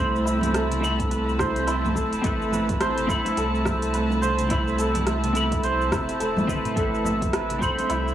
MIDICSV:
0, 0, Header, 1, 6, 480
1, 0, Start_track
1, 0, Key_signature, 0, "minor"
1, 0, Tempo, 566038
1, 1897, Time_signature, 4, 2, 24, 8
1, 6907, End_track
2, 0, Start_track
2, 0, Title_t, "Santur"
2, 0, Program_c, 0, 15
2, 0, Note_on_c, 0, 64, 100
2, 0, Note_on_c, 0, 69, 79
2, 0, Note_on_c, 0, 72, 100
2, 0, Note_on_c, 0, 76, 88
2, 210, Note_off_c, 0, 64, 0
2, 213, Note_on_c, 0, 64, 96
2, 458, Note_off_c, 0, 69, 0
2, 462, Note_on_c, 0, 69, 76
2, 697, Note_off_c, 0, 76, 0
2, 701, Note_on_c, 0, 76, 71
2, 937, Note_on_c, 0, 71, 85
2, 988, Note_off_c, 0, 72, 0
2, 1177, Note_on_c, 0, 72, 105
2, 1228, Note_off_c, 0, 71, 0
2, 1413, Note_off_c, 0, 64, 0
2, 1416, Note_on_c, 0, 64, 101
2, 1654, Note_off_c, 0, 69, 0
2, 1657, Note_on_c, 0, 69, 76
2, 1893, Note_off_c, 0, 76, 0
2, 1897, Note_on_c, 0, 76, 80
2, 2141, Note_on_c, 0, 71, 80
2, 2192, Note_off_c, 0, 72, 0
2, 2379, Note_on_c, 0, 72, 101
2, 2430, Note_off_c, 0, 71, 0
2, 2615, Note_off_c, 0, 64, 0
2, 2618, Note_on_c, 0, 64, 103
2, 2858, Note_off_c, 0, 69, 0
2, 2861, Note_on_c, 0, 69, 84
2, 3095, Note_off_c, 0, 76, 0
2, 3098, Note_on_c, 0, 76, 78
2, 3340, Note_on_c, 0, 71, 86
2, 3391, Note_off_c, 0, 72, 0
2, 3575, Note_on_c, 0, 72, 103
2, 3626, Note_off_c, 0, 71, 0
2, 3817, Note_off_c, 0, 64, 0
2, 3821, Note_on_c, 0, 64, 105
2, 4055, Note_off_c, 0, 69, 0
2, 4058, Note_on_c, 0, 69, 78
2, 4296, Note_off_c, 0, 76, 0
2, 4299, Note_on_c, 0, 76, 81
2, 4536, Note_on_c, 0, 71, 71
2, 4587, Note_off_c, 0, 72, 0
2, 4780, Note_on_c, 0, 72, 102
2, 4831, Note_off_c, 0, 71, 0
2, 5015, Note_off_c, 0, 64, 0
2, 5018, Note_on_c, 0, 64, 94
2, 5253, Note_off_c, 0, 69, 0
2, 5257, Note_on_c, 0, 69, 82
2, 5495, Note_off_c, 0, 76, 0
2, 5499, Note_on_c, 0, 76, 77
2, 5729, Note_off_c, 0, 69, 0
2, 5733, Note_on_c, 0, 69, 84
2, 5971, Note_off_c, 0, 76, 0
2, 5974, Note_on_c, 0, 76, 74
2, 6215, Note_on_c, 0, 71, 83
2, 6266, Note_off_c, 0, 72, 0
2, 6457, Note_on_c, 0, 72, 100
2, 6508, Note_off_c, 0, 71, 0
2, 6690, Note_off_c, 0, 64, 0
2, 6693, Note_on_c, 0, 64, 99
2, 6907, Note_off_c, 0, 64, 0
2, 6907, Note_off_c, 0, 69, 0
2, 6907, Note_off_c, 0, 72, 0
2, 6907, Note_off_c, 0, 76, 0
2, 6907, End_track
3, 0, Start_track
3, 0, Title_t, "String section"
3, 0, Program_c, 1, 48
3, 0, Note_on_c, 1, 45, 67
3, 0, Note_on_c, 1, 57, 89
3, 0, Note_on_c, 1, 60, 71
3, 0, Note_on_c, 1, 81, 79
3, 0, Note_on_c, 1, 83, 84
3, 6619, Note_on_c, 1, 76, 72
3, 6648, Note_off_c, 1, 81, 0
3, 6907, Note_off_c, 1, 45, 0
3, 6907, Note_off_c, 1, 57, 0
3, 6907, Note_off_c, 1, 60, 0
3, 6907, Note_off_c, 1, 76, 0
3, 6907, Note_off_c, 1, 83, 0
3, 6907, End_track
4, 0, Start_track
4, 0, Title_t, "Clean electric guitar"
4, 0, Program_c, 2, 27
4, 0, Note_on_c, 2, 60, 76
4, 0, Note_on_c, 2, 64, 70
4, 0, Note_on_c, 2, 69, 66
4, 0, Note_on_c, 2, 83, 84
4, 665, Note_off_c, 2, 60, 0
4, 669, Note_off_c, 2, 64, 0
4, 675, Note_off_c, 2, 69, 0
4, 681, Note_off_c, 2, 83, 0
4, 682, Note_on_c, 2, 60, 82
4, 692, Note_on_c, 2, 64, 77
4, 704, Note_on_c, 2, 69, 80
4, 713, Note_on_c, 2, 83, 97
4, 1866, Note_off_c, 2, 60, 0
4, 1871, Note_off_c, 2, 64, 0
4, 1877, Note_off_c, 2, 69, 0
4, 1880, Note_on_c, 2, 60, 79
4, 1882, Note_off_c, 2, 83, 0
4, 1894, Note_on_c, 2, 64, 67
4, 1903, Note_on_c, 2, 69, 69
4, 1915, Note_on_c, 2, 71, 79
4, 2585, Note_off_c, 2, 60, 0
4, 2592, Note_off_c, 2, 64, 0
4, 2597, Note_off_c, 2, 69, 0
4, 2602, Note_on_c, 2, 60, 86
4, 2603, Note_off_c, 2, 71, 0
4, 2612, Note_on_c, 2, 64, 75
4, 2624, Note_on_c, 2, 69, 79
4, 2638, Note_on_c, 2, 83, 97
4, 3786, Note_off_c, 2, 60, 0
4, 3791, Note_off_c, 2, 64, 0
4, 3797, Note_off_c, 2, 69, 0
4, 3804, Note_off_c, 2, 83, 0
4, 3806, Note_on_c, 2, 60, 76
4, 3817, Note_on_c, 2, 64, 68
4, 3828, Note_on_c, 2, 69, 70
4, 3840, Note_on_c, 2, 83, 84
4, 4508, Note_off_c, 2, 60, 0
4, 4514, Note_off_c, 2, 64, 0
4, 4519, Note_off_c, 2, 69, 0
4, 4519, Note_on_c, 2, 60, 84
4, 4525, Note_off_c, 2, 83, 0
4, 4530, Note_on_c, 2, 64, 74
4, 4544, Note_on_c, 2, 69, 76
4, 4552, Note_on_c, 2, 83, 95
4, 5469, Note_off_c, 2, 60, 0
4, 5474, Note_off_c, 2, 64, 0
4, 5481, Note_off_c, 2, 69, 0
4, 5485, Note_off_c, 2, 83, 0
4, 5489, Note_on_c, 2, 60, 88
4, 5497, Note_on_c, 2, 64, 85
4, 5503, Note_on_c, 2, 69, 79
4, 5507, Note_on_c, 2, 71, 102
4, 5710, Note_off_c, 2, 60, 0
4, 5714, Note_off_c, 2, 64, 0
4, 5717, Note_off_c, 2, 69, 0
4, 5719, Note_off_c, 2, 71, 0
4, 5725, Note_on_c, 2, 60, 71
4, 5734, Note_on_c, 2, 64, 69
4, 5746, Note_on_c, 2, 69, 67
4, 5758, Note_on_c, 2, 71, 78
4, 6428, Note_off_c, 2, 60, 0
4, 6432, Note_off_c, 2, 64, 0
4, 6436, Note_on_c, 2, 60, 88
4, 6438, Note_off_c, 2, 69, 0
4, 6444, Note_off_c, 2, 71, 0
4, 6449, Note_on_c, 2, 64, 74
4, 6462, Note_on_c, 2, 69, 76
4, 6473, Note_on_c, 2, 83, 92
4, 6907, Note_off_c, 2, 60, 0
4, 6907, Note_off_c, 2, 64, 0
4, 6907, Note_off_c, 2, 69, 0
4, 6907, Note_off_c, 2, 83, 0
4, 6907, End_track
5, 0, Start_track
5, 0, Title_t, "Sub bass"
5, 0, Program_c, 3, 38
5, 0, Note_on_c, 3, 36, 81
5, 1713, Note_off_c, 3, 36, 0
5, 1803, Note_on_c, 3, 28, 92
5, 1862, Note_off_c, 3, 28, 0
5, 1904, Note_on_c, 3, 33, 95
5, 2677, Note_off_c, 3, 33, 0
5, 2858, Note_on_c, 3, 36, 88
5, 5015, Note_off_c, 3, 36, 0
5, 5020, Note_on_c, 3, 28, 87
5, 5185, Note_off_c, 3, 28, 0
5, 5261, Note_on_c, 3, 28, 84
5, 5680, Note_off_c, 3, 28, 0
5, 5740, Note_on_c, 3, 33, 97
5, 6515, Note_off_c, 3, 33, 0
5, 6696, Note_on_c, 3, 36, 82
5, 6907, Note_off_c, 3, 36, 0
5, 6907, End_track
6, 0, Start_track
6, 0, Title_t, "Drums"
6, 133, Note_on_c, 9, 82, 21
6, 218, Note_off_c, 9, 82, 0
6, 230, Note_on_c, 9, 82, 82
6, 315, Note_off_c, 9, 82, 0
6, 350, Note_on_c, 9, 64, 85
6, 366, Note_on_c, 9, 42, 45
6, 374, Note_on_c, 9, 82, 33
6, 434, Note_off_c, 9, 64, 0
6, 451, Note_off_c, 9, 42, 0
6, 459, Note_off_c, 9, 82, 0
6, 461, Note_on_c, 9, 37, 82
6, 461, Note_on_c, 9, 42, 59
6, 470, Note_on_c, 9, 82, 48
6, 546, Note_off_c, 9, 37, 0
6, 546, Note_off_c, 9, 42, 0
6, 554, Note_off_c, 9, 82, 0
6, 599, Note_on_c, 9, 63, 61
6, 607, Note_on_c, 9, 42, 53
6, 615, Note_on_c, 9, 82, 21
6, 684, Note_off_c, 9, 63, 0
6, 691, Note_off_c, 9, 42, 0
6, 700, Note_off_c, 9, 82, 0
6, 713, Note_on_c, 9, 82, 78
6, 798, Note_off_c, 9, 82, 0
6, 838, Note_on_c, 9, 60, 59
6, 844, Note_on_c, 9, 36, 101
6, 846, Note_on_c, 9, 42, 42
6, 855, Note_on_c, 9, 82, 30
6, 923, Note_off_c, 9, 60, 0
6, 929, Note_off_c, 9, 36, 0
6, 931, Note_off_c, 9, 42, 0
6, 939, Note_off_c, 9, 82, 0
6, 943, Note_on_c, 9, 42, 57
6, 952, Note_on_c, 9, 82, 39
6, 1028, Note_off_c, 9, 42, 0
6, 1036, Note_off_c, 9, 82, 0
6, 1094, Note_on_c, 9, 82, 24
6, 1179, Note_off_c, 9, 82, 0
6, 1179, Note_on_c, 9, 60, 67
6, 1181, Note_on_c, 9, 37, 73
6, 1182, Note_on_c, 9, 36, 108
6, 1182, Note_on_c, 9, 63, 62
6, 1190, Note_on_c, 9, 82, 74
6, 1264, Note_off_c, 9, 60, 0
6, 1266, Note_off_c, 9, 37, 0
6, 1267, Note_off_c, 9, 36, 0
6, 1267, Note_off_c, 9, 63, 0
6, 1275, Note_off_c, 9, 82, 0
6, 1324, Note_on_c, 9, 42, 47
6, 1332, Note_on_c, 9, 82, 30
6, 1409, Note_off_c, 9, 42, 0
6, 1417, Note_off_c, 9, 82, 0
6, 1421, Note_on_c, 9, 42, 53
6, 1429, Note_on_c, 9, 82, 41
6, 1506, Note_off_c, 9, 42, 0
6, 1514, Note_off_c, 9, 82, 0
6, 1565, Note_on_c, 9, 64, 83
6, 1573, Note_on_c, 9, 82, 22
6, 1650, Note_off_c, 9, 64, 0
6, 1658, Note_off_c, 9, 82, 0
6, 1662, Note_on_c, 9, 36, 56
6, 1667, Note_on_c, 9, 82, 75
6, 1747, Note_off_c, 9, 36, 0
6, 1752, Note_off_c, 9, 82, 0
6, 1803, Note_on_c, 9, 42, 44
6, 1811, Note_on_c, 9, 82, 34
6, 1888, Note_off_c, 9, 42, 0
6, 1896, Note_off_c, 9, 82, 0
6, 1900, Note_on_c, 9, 42, 58
6, 1902, Note_on_c, 9, 36, 118
6, 1908, Note_on_c, 9, 82, 42
6, 1985, Note_off_c, 9, 42, 0
6, 1987, Note_off_c, 9, 36, 0
6, 1993, Note_off_c, 9, 82, 0
6, 2044, Note_on_c, 9, 63, 35
6, 2051, Note_on_c, 9, 82, 20
6, 2129, Note_off_c, 9, 63, 0
6, 2136, Note_off_c, 9, 82, 0
6, 2138, Note_on_c, 9, 64, 77
6, 2148, Note_on_c, 9, 82, 75
6, 2223, Note_off_c, 9, 64, 0
6, 2233, Note_off_c, 9, 82, 0
6, 2280, Note_on_c, 9, 64, 79
6, 2282, Note_on_c, 9, 42, 45
6, 2285, Note_on_c, 9, 36, 100
6, 2290, Note_on_c, 9, 82, 32
6, 2365, Note_off_c, 9, 64, 0
6, 2367, Note_off_c, 9, 42, 0
6, 2370, Note_off_c, 9, 36, 0
6, 2375, Note_off_c, 9, 82, 0
6, 2379, Note_on_c, 9, 37, 80
6, 2379, Note_on_c, 9, 42, 62
6, 2387, Note_on_c, 9, 82, 43
6, 2464, Note_off_c, 9, 37, 0
6, 2464, Note_off_c, 9, 42, 0
6, 2472, Note_off_c, 9, 82, 0
6, 2523, Note_on_c, 9, 42, 52
6, 2525, Note_on_c, 9, 63, 59
6, 2532, Note_on_c, 9, 82, 23
6, 2608, Note_off_c, 9, 42, 0
6, 2610, Note_off_c, 9, 63, 0
6, 2617, Note_off_c, 9, 82, 0
6, 2622, Note_on_c, 9, 36, 101
6, 2627, Note_on_c, 9, 82, 76
6, 2706, Note_off_c, 9, 36, 0
6, 2712, Note_off_c, 9, 82, 0
6, 2757, Note_on_c, 9, 60, 73
6, 2764, Note_on_c, 9, 42, 46
6, 2773, Note_on_c, 9, 82, 32
6, 2842, Note_off_c, 9, 60, 0
6, 2849, Note_off_c, 9, 42, 0
6, 2858, Note_off_c, 9, 82, 0
6, 2860, Note_on_c, 9, 42, 59
6, 2868, Note_on_c, 9, 82, 42
6, 2945, Note_off_c, 9, 42, 0
6, 2953, Note_off_c, 9, 82, 0
6, 3012, Note_on_c, 9, 82, 24
6, 3097, Note_off_c, 9, 82, 0
6, 3097, Note_on_c, 9, 64, 85
6, 3099, Note_on_c, 9, 37, 77
6, 3103, Note_on_c, 9, 36, 60
6, 3107, Note_on_c, 9, 82, 70
6, 3182, Note_off_c, 9, 64, 0
6, 3184, Note_off_c, 9, 37, 0
6, 3187, Note_off_c, 9, 36, 0
6, 3192, Note_off_c, 9, 82, 0
6, 3242, Note_on_c, 9, 42, 46
6, 3250, Note_on_c, 9, 82, 34
6, 3327, Note_off_c, 9, 42, 0
6, 3335, Note_off_c, 9, 82, 0
6, 3340, Note_on_c, 9, 42, 56
6, 3348, Note_on_c, 9, 82, 41
6, 3424, Note_off_c, 9, 42, 0
6, 3433, Note_off_c, 9, 82, 0
6, 3480, Note_on_c, 9, 60, 67
6, 3491, Note_on_c, 9, 82, 22
6, 3564, Note_off_c, 9, 60, 0
6, 3576, Note_off_c, 9, 82, 0
6, 3585, Note_on_c, 9, 60, 57
6, 3585, Note_on_c, 9, 63, 54
6, 3586, Note_on_c, 9, 82, 75
6, 3670, Note_off_c, 9, 60, 0
6, 3670, Note_off_c, 9, 63, 0
6, 3671, Note_off_c, 9, 82, 0
6, 3719, Note_on_c, 9, 42, 49
6, 3723, Note_on_c, 9, 63, 58
6, 3727, Note_on_c, 9, 82, 33
6, 3803, Note_off_c, 9, 42, 0
6, 3808, Note_off_c, 9, 63, 0
6, 3812, Note_off_c, 9, 82, 0
6, 3816, Note_on_c, 9, 42, 58
6, 3822, Note_on_c, 9, 36, 121
6, 3825, Note_on_c, 9, 82, 43
6, 3901, Note_off_c, 9, 42, 0
6, 3907, Note_off_c, 9, 36, 0
6, 3910, Note_off_c, 9, 82, 0
6, 3967, Note_on_c, 9, 82, 21
6, 4051, Note_off_c, 9, 82, 0
6, 4057, Note_on_c, 9, 42, 34
6, 4066, Note_on_c, 9, 82, 82
6, 4142, Note_off_c, 9, 42, 0
6, 4150, Note_off_c, 9, 82, 0
6, 4197, Note_on_c, 9, 42, 49
6, 4203, Note_on_c, 9, 64, 84
6, 4206, Note_on_c, 9, 82, 33
6, 4282, Note_off_c, 9, 42, 0
6, 4288, Note_off_c, 9, 64, 0
6, 4290, Note_off_c, 9, 82, 0
6, 4296, Note_on_c, 9, 37, 78
6, 4296, Note_on_c, 9, 42, 63
6, 4305, Note_on_c, 9, 82, 45
6, 4381, Note_off_c, 9, 37, 0
6, 4381, Note_off_c, 9, 42, 0
6, 4390, Note_off_c, 9, 82, 0
6, 4441, Note_on_c, 9, 42, 57
6, 4442, Note_on_c, 9, 63, 72
6, 4449, Note_on_c, 9, 82, 21
6, 4526, Note_off_c, 9, 42, 0
6, 4526, Note_off_c, 9, 63, 0
6, 4534, Note_off_c, 9, 82, 0
6, 4537, Note_on_c, 9, 42, 36
6, 4546, Note_on_c, 9, 82, 80
6, 4622, Note_off_c, 9, 42, 0
6, 4630, Note_off_c, 9, 82, 0
6, 4674, Note_on_c, 9, 60, 67
6, 4680, Note_on_c, 9, 42, 47
6, 4684, Note_on_c, 9, 36, 97
6, 4689, Note_on_c, 9, 82, 31
6, 4759, Note_off_c, 9, 60, 0
6, 4765, Note_off_c, 9, 42, 0
6, 4769, Note_off_c, 9, 36, 0
6, 4773, Note_off_c, 9, 82, 0
6, 4778, Note_on_c, 9, 42, 61
6, 4787, Note_on_c, 9, 82, 42
6, 4863, Note_off_c, 9, 42, 0
6, 4872, Note_off_c, 9, 82, 0
6, 4930, Note_on_c, 9, 82, 22
6, 5015, Note_off_c, 9, 82, 0
6, 5020, Note_on_c, 9, 36, 106
6, 5021, Note_on_c, 9, 37, 77
6, 5021, Note_on_c, 9, 42, 31
6, 5023, Note_on_c, 9, 60, 63
6, 5026, Note_on_c, 9, 63, 61
6, 5029, Note_on_c, 9, 82, 73
6, 5105, Note_off_c, 9, 36, 0
6, 5106, Note_off_c, 9, 37, 0
6, 5106, Note_off_c, 9, 42, 0
6, 5108, Note_off_c, 9, 60, 0
6, 5111, Note_off_c, 9, 63, 0
6, 5114, Note_off_c, 9, 82, 0
6, 5163, Note_on_c, 9, 42, 48
6, 5172, Note_on_c, 9, 82, 31
6, 5248, Note_off_c, 9, 42, 0
6, 5257, Note_off_c, 9, 82, 0
6, 5261, Note_on_c, 9, 42, 54
6, 5270, Note_on_c, 9, 82, 42
6, 5346, Note_off_c, 9, 42, 0
6, 5354, Note_off_c, 9, 82, 0
6, 5399, Note_on_c, 9, 64, 93
6, 5403, Note_on_c, 9, 48, 52
6, 5411, Note_on_c, 9, 82, 22
6, 5484, Note_off_c, 9, 64, 0
6, 5487, Note_off_c, 9, 48, 0
6, 5496, Note_off_c, 9, 82, 0
6, 5499, Note_on_c, 9, 47, 77
6, 5500, Note_on_c, 9, 36, 61
6, 5508, Note_on_c, 9, 82, 78
6, 5584, Note_off_c, 9, 47, 0
6, 5585, Note_off_c, 9, 36, 0
6, 5592, Note_off_c, 9, 82, 0
6, 5642, Note_on_c, 9, 42, 47
6, 5642, Note_on_c, 9, 45, 77
6, 5650, Note_on_c, 9, 82, 33
6, 5727, Note_off_c, 9, 42, 0
6, 5727, Note_off_c, 9, 45, 0
6, 5735, Note_off_c, 9, 82, 0
6, 5739, Note_on_c, 9, 36, 127
6, 5741, Note_on_c, 9, 42, 58
6, 5749, Note_on_c, 9, 82, 45
6, 5824, Note_off_c, 9, 36, 0
6, 5825, Note_off_c, 9, 42, 0
6, 5834, Note_off_c, 9, 82, 0
6, 5872, Note_on_c, 9, 63, 40
6, 5891, Note_on_c, 9, 82, 23
6, 5957, Note_off_c, 9, 63, 0
6, 5976, Note_off_c, 9, 82, 0
6, 5976, Note_on_c, 9, 64, 94
6, 5987, Note_on_c, 9, 82, 85
6, 6061, Note_off_c, 9, 64, 0
6, 6072, Note_off_c, 9, 82, 0
6, 6121, Note_on_c, 9, 36, 98
6, 6122, Note_on_c, 9, 64, 79
6, 6124, Note_on_c, 9, 42, 51
6, 6132, Note_on_c, 9, 82, 34
6, 6206, Note_off_c, 9, 36, 0
6, 6206, Note_off_c, 9, 64, 0
6, 6209, Note_off_c, 9, 42, 0
6, 6217, Note_off_c, 9, 82, 0
6, 6218, Note_on_c, 9, 37, 83
6, 6218, Note_on_c, 9, 42, 63
6, 6227, Note_on_c, 9, 82, 44
6, 6303, Note_off_c, 9, 37, 0
6, 6303, Note_off_c, 9, 42, 0
6, 6311, Note_off_c, 9, 82, 0
6, 6353, Note_on_c, 9, 63, 71
6, 6360, Note_on_c, 9, 42, 57
6, 6369, Note_on_c, 9, 82, 24
6, 6438, Note_off_c, 9, 63, 0
6, 6445, Note_off_c, 9, 42, 0
6, 6454, Note_off_c, 9, 82, 0
6, 6458, Note_on_c, 9, 36, 92
6, 6465, Note_on_c, 9, 82, 82
6, 6543, Note_off_c, 9, 36, 0
6, 6549, Note_off_c, 9, 82, 0
6, 6597, Note_on_c, 9, 60, 63
6, 6602, Note_on_c, 9, 42, 47
6, 6611, Note_on_c, 9, 82, 31
6, 6682, Note_off_c, 9, 60, 0
6, 6687, Note_off_c, 9, 42, 0
6, 6695, Note_off_c, 9, 82, 0
6, 6697, Note_on_c, 9, 42, 53
6, 6705, Note_on_c, 9, 82, 44
6, 6782, Note_off_c, 9, 42, 0
6, 6790, Note_off_c, 9, 82, 0
6, 6852, Note_on_c, 9, 82, 23
6, 6907, Note_off_c, 9, 82, 0
6, 6907, End_track
0, 0, End_of_file